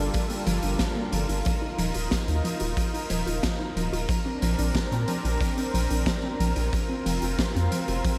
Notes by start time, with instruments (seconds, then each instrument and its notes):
Already playing: analog synth bass G1, analog synth pad G3 D4 F4 A4 A#4
0.14 synth arpeggio sound F3, kick, closed hi-hat
0.30 synth arpeggio sound A#3, closed hi-hat
0.47 analog synth bass G1, synth arpeggio sound F3, closed hi-hat
0.62 analog synth bass G1, synth arpeggio sound D4, closed hi-hat
0.79 synth arpeggio sound F3, kick, snare, closed hi-hat
0.96 synth arpeggio sound A#3
1.12 analog synth bass G1, synth arpeggio sound F3, closed hi-hat
1.29 analog synth bass G1, synth arpeggio sound D4, closed hi-hat
1.45 synth arpeggio sound F3, analog synth pad D#4, kick, closed hi-hat
1.62 synth arpeggio sound D#4
1.78 analog synth bass D#1, synth arpeggio sound F3, closed hi-hat
1.94 analog synth bass D#1, synth arpeggio sound F4, closed hi-hat
2.11 synth arpeggio sound F3, kick, snare, closed hi-hat
2.28 analog synth bass D#2, synth arpeggio sound D#4, closed hi-hat
2.44 synth arpeggio sound F3, closed hi-hat
2.60 analog synth bass D#1, synth arpeggio sound F4, closed hi-hat
2.77 synth arpeggio sound F3, kick, closed hi-hat
2.94 synth arpeggio sound D#4, closed hi-hat
3.10 analog synth bass D#1, synth arpeggio sound F3, closed hi-hat
3.27 analog synth bass D#1, synth arpeggio sound F4, closed hi-hat
3.43 synth arpeggio sound F3, kick, snare, closed hi-hat
3.60 synth arpeggio sound D#4
3.76 analog synth bass D#1, synth arpeggio sound F3, closed hi-hat
3.93 analog synth bass D#1, synth arpeggio sound F4, closed hi-hat
4.09 synth arpeggio sound F3, analog synth pad C4 D4, kick, closed hi-hat
4.26 synth arpeggio sound C4
4.42 analog synth bass A#1, synth arpeggio sound F3, closed hi-hat
4.59 analog synth bass A#1, synth arpeggio sound D4, closed hi-hat
4.75 synth arpeggio sound F3, kick, snare, closed hi-hat
4.92 analog synth bass A#2, synth arpeggio sound C4, closed hi-hat
5.08 synth arpeggio sound F3, closed hi-hat
5.25 analog synth bass A#1, synth arpeggio sound D4, closed hi-hat
5.41 synth arpeggio sound F3, kick, closed hi-hat
5.57 synth arpeggio sound C4, closed hi-hat
5.74 analog synth bass A#1, synth arpeggio sound F3, closed hi-hat
5.90 analog synth bass A#1, synth arpeggio sound D4, closed hi-hat
6.06 synth arpeggio sound F3, kick, snare, closed hi-hat
6.24 synth arpeggio sound C4
6.40 analog synth bass A#1, synth arpeggio sound F3, closed hi-hat
6.56 analog synth bass A#1, synth arpeggio sound D4, closed hi-hat
6.73 synth arpeggio sound F3, analog synth pad C4 F4, kick, closed hi-hat
6.90 synth arpeggio sound C4
7.06 analog synth bass F1, synth arpeggio sound F3, closed hi-hat
7.22 analog synth bass F1, synth arpeggio sound F4, closed hi-hat
7.39 synth arpeggio sound F3, kick, snare, closed hi-hat
7.55 analog synth bass F2, synth arpeggio sound C4, closed hi-hat
7.72 synth arpeggio sound F3, closed hi-hat
7.88 analog synth bass F1, synth arpeggio sound F4, closed hi-hat
8.05 synth arpeggio sound F3, kick, closed hi-hat